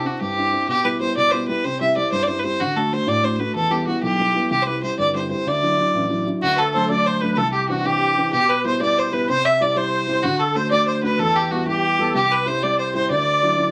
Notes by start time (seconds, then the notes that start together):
0.04 C4 D4 E4 F#4
0.21 G2 G4
0.36 C4 D4 E4
0.52 C4 D4 E4
0.68 B2 G4
0.84 G3 B3 E4 B4
1.00 G3 B3 E4 C5
1.16 B2 D5
1.29 G3 B3 E4 B4 C5
1.48 G3 B3 E4 B4
1.64 C3 C5
1.80 G3 C4 E4 E5
1.96 G3 C4 E4 D5
2.12 G2 C5
2.23 D5
2.27 G3 C4 E4 C5
2.39 B4 C5
2.44 G3 C4 E4
2.60 D3 F#4
2.76 A3 D4 F#4 A4
2.92 A3 D4 F#4 C5
3.07 A2 D5
3.23 A3 D4 F#4 C5
3.35 A3 C5
3.40 D4 F#4 B4
3.55 E2 A4
3.70 G3 B3 E4 G4
3.87 G3 B3 E4 F#4
4.03 B1 G4
4.19 G3 B3 E4
4.35 G3 B3 E4
4.51 C2 G4
4.62 C5
4.67 G3 C4 E4 B4
4.83 G3 C4 E4 C5
4.98 G1 D5
5.14 G3 C4 E4 C5
5.30 G3 C4 E4 C5
5.46 D2 D5
5.62 F#3 D4 E4
5.78 F#3 D4 E4
5.94 A1
6.09 F#3 D4 E4
6.26 F#3 D4 E4
6.41 D2 F#4
6.55 A4 B4
6.74 F#3 A3 D4 C5
6.90 F#3 A3 D4 D5
7.05 C5
7.21 F#3 A3 D4 B4
7.34 C2 A4 B4
7.52 G4
7.68 E3 C4 D4 F#4
7.84 E3 C4 D4 G4
8.16 E3 C4 D4
8.33 B2 G4
8.49 B4
8.64 G3 B3 E4 C5
8.80 G3 B3 E4 D5
8.98 C5
9.12 G3 B3 E4 B4
9.29 C3 C5
9.45 E5
9.60 G3 C4 E4 D5
9.76 G3 C4 E4 C5
10.08 G3 C4 E4
10.23 D3 F#4
10.39 A4
10.55 A3 D4 F#4 C5
10.71 A3 D4 F#4 D5
10.86 C5
11.02 A3 D4 F#4 B4
11.19 E2 A4
11.35 G4
11.46 G4
11.51 G3 B3 E4 F#4
11.66 G3 B3 E4 G4
11.99 G3 B3 E4 A4
12.14 C2 G4
12.30 B4
12.46 G3 C4 E4 C5
12.63 G3 C4 E4 D5
12.79 C5
12.94 G3 C4 E4 C5
13.10 D2 D5
13.43 F#3 D4 E4
13.57 F#3 D4 E4